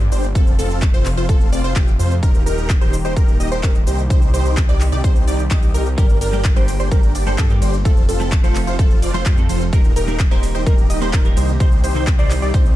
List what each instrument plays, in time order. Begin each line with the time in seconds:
Already playing: analog synth pad D3 G3 A#3 G4
0.00 closed hi-hat, shaker
0.12 detuned saw bass G1, supersaw synth D4 G4 C5, synth pluck C5, open hi-hat, shaker
0.24 closed hi-hat, shaker
0.35 detuned saw bass F1, analog synth pad C3 F3 A3 F4, supersaw synth C4 F4 A4, synth pluck A4, kick, closed hi-hat, shaker
0.47 closed hi-hat, shaker
0.59 detuned saw bass F1, supersaw synth C4 F4 A4, synth pluck A4, open hi-hat, shaker
0.70 closed hi-hat, shaker
0.82 kick, clap, closed hi-hat, shaker
0.94 detuned saw bass F1, supersaw synth C4 F4 C5, synth pluck C5, closed hi-hat, shaker
1.06 clap, open hi-hat, shaker
1.17 detuned saw bass F1, supersaw synth C4 F4 C5, synth pluck C5, closed hi-hat, shaker
1.29 detuned saw bass F1, supersaw synth C4 F4 A4, synth pluck A4, kick, closed hi-hat, shaker
1.41 closed hi-hat, shaker
1.52 detuned saw bass F1, supersaw synth C4 F4 D5, synth pluck D5, open hi-hat, shaker
1.64 detuned saw bass F1, supersaw synth C4 F4 C5, synth pluck C5, closed hi-hat, shaker
1.76 detuned saw bass F1, supersaw synth C4 F4 G4, synth pluck G4, kick, clap, closed hi-hat, shaker
1.88 closed hi-hat, shaker
1.99 detuned saw bass F2, supersaw synth C4 F4 C5, synth pluck C5, open hi-hat, shaker
2.11 closed hi-hat, shaker
2.23 detuned saw bass D#1, analog synth pad D#3 G3 A#3 G4, supersaw synth D#4 G4 A#4, synth pluck A#4, kick, closed hi-hat, shaker
2.35 closed hi-hat, shaker
2.46 detuned saw bass D#1, supersaw synth D#4 G4 A#4, synth pluck A#4, open hi-hat, shaker
2.58 closed hi-hat, shaker
2.70 kick, clap, closed hi-hat, shaker
2.81 detuned saw bass D#1, supersaw synth D#4 G4 C5, synth pluck C5, closed hi-hat, shaker
2.93 open hi-hat, shaker
3.05 detuned saw bass D#1, supersaw synth D#4 G4 C5, synth pluck C5, closed hi-hat, shaker
3.17 detuned saw bass D#1, supersaw synth D#4 G4 A#4, synth pluck A#4, kick, closed hi-hat, shaker
3.28 closed hi-hat, shaker
3.40 detuned saw bass D#1, supersaw synth D#4 G4 D#5, synth pluck D#5, open hi-hat, shaker
3.52 detuned saw bass D#1, supersaw synth D#4 G4 C5, synth pluck C5, closed hi-hat, shaker
3.63 detuned saw bass D#1, supersaw synth D#4 G4 A#4, synth pluck A#4, kick, clap, closed hi-hat, shaker
3.75 closed hi-hat, shaker
3.87 detuned saw bass C2, supersaw synth D#4 G4 C5, synth pluck C5, open hi-hat, shaker
3.99 closed hi-hat, shaker
4.10 detuned saw bass C2, analog synth pad D#3 C4, supersaw synth D#4 G4 C5, synth pluck C5, kick, closed hi-hat, shaker
4.22 closed hi-hat, shaker
4.34 detuned saw bass C2, supersaw synth D#4 G4 C5, synth pluck C5, open hi-hat, shaker
4.45 closed hi-hat, shaker
4.57 kick, clap, closed hi-hat, shaker
4.69 detuned saw bass C2, supersaw synth D#4 G4 D5, synth pluck D5, closed hi-hat, shaker
4.81 clap, open hi-hat, shaker
4.92 detuned saw bass C2, supersaw synth D#4 G4 D5, synth pluck D5, closed hi-hat, shaker
5.04 detuned saw bass C2, supersaw synth D#4 G4 C5, synth pluck C5, kick, closed hi-hat, shaker
5.16 closed hi-hat, shaker
5.27 detuned saw bass C2, supersaw synth D#4 G4 D5, synth pluck D5, open hi-hat, shaker
5.39 closed hi-hat, shaker
5.51 detuned saw bass C2, supersaw synth D#4 G4 D#5, synth pluck D#5, kick, clap, closed hi-hat, shaker
5.63 closed hi-hat, shaker
5.74 detuned saw bass C2, supersaw synth D#4 G4 A#4, synth pluck A#4, open hi-hat, shaker
5.86 closed hi-hat, shaker
5.97 detuned saw bass G1, clean electric guitar G2 D3 G3 A#3 G4, analog synth pad D3 A#3, supersaw synth D4 G4 A#4, synth pluck A#4, kick, closed hi-hat, shaker
6.10 closed hi-hat, shaker
6.21 detuned saw bass G1, supersaw synth D4 G4 A#4, synth pluck A#4, open hi-hat, ride, shaker
6.32 clean electric guitar G2 D3 G3 A#3 G4, closed hi-hat, shaker
6.45 kick, clap, closed hi-hat, shaker
6.56 detuned saw bass G1, clean electric guitar G2 D3 G3 A#3 G4, supersaw synth D4 G4 C5, synth pluck C5, closed hi-hat, shaker
6.68 open hi-hat, ride, shaker
6.80 detuned saw bass G1, supersaw synth D4 G4 C5, synth pluck C5, closed hi-hat, shaker
6.91 detuned saw bass G1, clean electric guitar G2 D3 G3 A#3 G4, supersaw synth D4 G4 A#4, synth pluck A#4, kick, closed hi-hat, shaker
7.03 closed hi-hat, shaker
7.15 detuned saw bass G1, supersaw synth D4 G4 D5, synth pluck D5, open hi-hat, ride, shaker
7.26 detuned saw bass G1, clean electric guitar G2 D3 G3 A#3 A4, supersaw synth D4 G4 C5, synth pluck C5, closed hi-hat, shaker
7.38 detuned saw bass G2, supersaw synth D4 G4 A4, synth pluck A4, kick, clap, closed hi-hat, shaker
7.49 clean electric guitar G2 D3 G3 A#3 G4, closed hi-hat, shaker
7.62 detuned saw bass G1, supersaw synth D4 G4 C5, synth pluck C5, open hi-hat, ride, shaker
7.74 closed hi-hat, shaker
7.84 detuned saw bass F1, analog synth pad C3 F3 A3 F4, clean electric guitar F3 A3 C4 A4, supersaw synth C4 F4 A4, synth pluck A4, kick, closed hi-hat, shaker
7.97 closed hi-hat, shaker
8.09 detuned saw bass F1, supersaw synth C4 F4 A4, synth pluck A4, open hi-hat, ride, shaker
8.20 clean electric guitar F3 A3 C4 A4, closed hi-hat, shaker
8.32 kick, clap, closed hi-hat, shaker
8.43 detuned saw bass F1, clean electric guitar F3 A3 C4 A4, supersaw synth C4 F4 C5, synth pluck C5, closed hi-hat, shaker
8.56 clap, open hi-hat, ride, shaker
8.67 detuned saw bass F1, supersaw synth C4 F4 C5, synth pluck C5, closed hi-hat, shaker
8.78 detuned saw bass F1, clean electric guitar F3 A3 C4 A4, supersaw synth C4 F4 A4, synth pluck A4, kick, closed hi-hat, shaker
8.91 closed hi-hat, shaker
9.02 detuned saw bass F1, supersaw synth C4 F4 D5, synth pluck D5, open hi-hat, ride, shaker
9.14 detuned saw bass F1, clean electric guitar F3 A3 C4 C5, supersaw synth C4 F4 C5, synth pluck C5, closed hi-hat, shaker
9.26 detuned saw bass F2, supersaw synth C4 F4 G4, synth pluck G4, kick, clap, closed hi-hat, shaker
9.37 clean electric guitar F3 A3 C4 A4, closed hi-hat, shaker
9.49 detuned saw bass F1, supersaw synth C4 F4 C5, synth pluck C5, open hi-hat, ride, shaker
9.61 closed hi-hat, shaker
9.73 detuned saw bass D#1, analog synth pad D#3 G3 A#3 G4, clean electric guitar G3 A#3 D#4 A#4, supersaw synth D#4 G4 A#4, synth pluck A#4, kick, closed hi-hat, shaker
9.84 closed hi-hat, shaker
9.96 detuned saw bass D#1, supersaw synth D#4 G4 A#4, synth pluck A#4, open hi-hat, ride, shaker
10.08 clean electric guitar G3 A#3 D#4 A#4, closed hi-hat, shaker
10.20 kick, clap, closed hi-hat, shaker
10.31 detuned saw bass D#1, clean electric guitar G3 A#3 D#4 A#4, supersaw synth D#4 G4 C5, synth pluck C5, closed hi-hat, shaker
10.43 open hi-hat, ride, shaker
10.55 detuned saw bass D#1, supersaw synth D#4 G4 C5, synth pluck C5, closed hi-hat, shaker
10.66 detuned saw bass D#1, clean electric guitar G3 A#3 D#4 A#4, supersaw synth D#4 G4 A#4, synth pluck A#4, kick, closed hi-hat, shaker
10.78 closed hi-hat, shaker
10.90 detuned saw bass D#1, supersaw synth D#4 G4 D#5, synth pluck D#5, open hi-hat, ride, shaker
11.01 detuned saw bass D#1, clean electric guitar G3 A#3 D#4 C5, supersaw synth D#4 G4 C5, synth pluck C5, closed hi-hat, shaker
11.13 detuned saw bass D#1, supersaw synth D#4 G4 A#4, synth pluck A#4, kick, clap, closed hi-hat, shaker
11.25 clean electric guitar G3 A#3 D#4 A#4, closed hi-hat, shaker
11.37 detuned saw bass C2, supersaw synth D#4 G4 C5, synth pluck C5, open hi-hat, ride, shaker
11.49 closed hi-hat, shaker
11.60 detuned saw bass C2, clean electric guitar C3 G3 C4 D#4 C5, analog synth pad C4, supersaw synth D#4 G4 C5, synth pluck C5, kick, closed hi-hat, shaker
11.72 closed hi-hat, shaker
11.84 detuned saw bass C2, supersaw synth D#4 G4 C5, synth pluck C5, open hi-hat, ride, shaker
11.95 clean electric guitar C3 G3 C4 D#4 C5, closed hi-hat, shaker
12.07 kick, clap, closed hi-hat, shaker
12.18 detuned saw bass C2, clean electric guitar C3 G3 C4 D#4 C5, supersaw synth D#4 G4 D5, synth pluck D5, closed hi-hat, shaker
12.31 clap, open hi-hat, ride, shaker
12.42 detuned saw bass C2, supersaw synth D#4 G4 D5, synth pluck D5, closed hi-hat, shaker
12.53 detuned saw bass C2, clean electric guitar C3 G3 C4 D#4 C5, supersaw synth D#4 G4 C5, synth pluck C5, kick, closed hi-hat, shaker
12.66 closed hi-hat, shaker